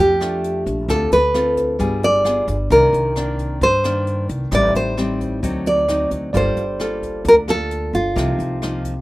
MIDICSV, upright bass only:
0, 0, Header, 1, 2, 480
1, 0, Start_track
1, 0, Tempo, 455235
1, 934, Time_signature, 4, 2, 24, 8
1, 9502, End_track
2, 0, Start_track
2, 0, Title_t, "Upright bass"
2, 0, Program_c, 0, 32
2, 0, Note_on_c, 0, 41, 91
2, 657, Note_off_c, 0, 41, 0
2, 700, Note_on_c, 0, 34, 86
2, 920, Note_off_c, 0, 34, 0
2, 933, Note_on_c, 0, 38, 94
2, 1156, Note_off_c, 0, 38, 0
2, 1174, Note_on_c, 0, 38, 72
2, 1852, Note_off_c, 0, 38, 0
2, 1893, Note_on_c, 0, 31, 91
2, 2571, Note_off_c, 0, 31, 0
2, 2611, Note_on_c, 0, 31, 85
2, 2836, Note_off_c, 0, 31, 0
2, 2850, Note_on_c, 0, 36, 96
2, 3075, Note_off_c, 0, 36, 0
2, 3087, Note_on_c, 0, 36, 83
2, 3769, Note_off_c, 0, 36, 0
2, 3809, Note_on_c, 0, 43, 91
2, 4489, Note_off_c, 0, 43, 0
2, 4527, Note_on_c, 0, 36, 86
2, 4753, Note_off_c, 0, 36, 0
2, 4764, Note_on_c, 0, 33, 101
2, 4992, Note_off_c, 0, 33, 0
2, 5006, Note_on_c, 0, 33, 75
2, 5687, Note_off_c, 0, 33, 0
2, 5723, Note_on_c, 0, 38, 83
2, 6405, Note_off_c, 0, 38, 0
2, 6443, Note_on_c, 0, 38, 77
2, 6671, Note_off_c, 0, 38, 0
2, 6685, Note_on_c, 0, 31, 101
2, 6912, Note_off_c, 0, 31, 0
2, 6924, Note_on_c, 0, 31, 74
2, 7606, Note_off_c, 0, 31, 0
2, 7640, Note_on_c, 0, 38, 88
2, 8324, Note_off_c, 0, 38, 0
2, 8366, Note_on_c, 0, 31, 80
2, 8592, Note_off_c, 0, 31, 0
2, 8608, Note_on_c, 0, 36, 101
2, 8833, Note_off_c, 0, 36, 0
2, 8844, Note_on_c, 0, 36, 74
2, 9502, Note_off_c, 0, 36, 0
2, 9502, End_track
0, 0, End_of_file